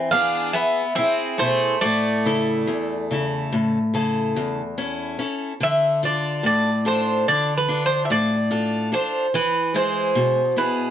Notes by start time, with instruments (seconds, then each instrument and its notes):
Already playing: steel-string acoustic guitar E3
0.11 steel-string acoustic guitar B3 G#4, bouzouki D4 F5
0.53 bouzouki B3 E5
0.95 bouzouki C4 E5, steel-string acoustic guitar E4 G#4
1.38 steel-string acoustic guitar B2 E4 G#4, bouzouki A3 C5
1.81 steel-string acoustic guitar A2, bouzouki A3 D5
2.25 steel-string acoustic guitar C#3 E4 A4
2.67 steel-string acoustic guitar E2
3.11 steel-string acoustic guitar C#3 E4 A4
3.52 steel-string acoustic guitar A2
3.94 steel-string acoustic guitar C#3 E4 A4
4.36 steel-string acoustic guitar E2
4.78 steel-string acoustic guitar C#4 E4 A4
5.19 steel-string acoustic guitar C#4 E4 A4
5.60 steel-string acoustic guitar D3, bouzouki E5
6.03 steel-string acoustic guitar D4 F4 A4, bouzouki D5
6.43 steel-string acoustic guitar A2, bouzouki D5
6.85 steel-string acoustic guitar D4 F4 A4, bouzouki C5
7.28 steel-string acoustic guitar D3, bouzouki D5
7.57 bouzouki B4
7.68 steel-string acoustic guitar D4 F4 A4
7.86 bouzouki C5
8.05 bouzouki E5
8.10 steel-string acoustic guitar A2, bouzouki D5
8.50 steel-string acoustic guitar D4 F4 A4
8.92 steel-string acoustic guitar D4 F4 A4, bouzouki C5
9.34 steel-string acoustic guitar E3, bouzouki B4
9.74 steel-string acoustic guitar G#3 E4 G#4, bouzouki C5
10.15 steel-string acoustic guitar B2
10.56 steel-string acoustic guitar B3 E4 G#4, bouzouki B4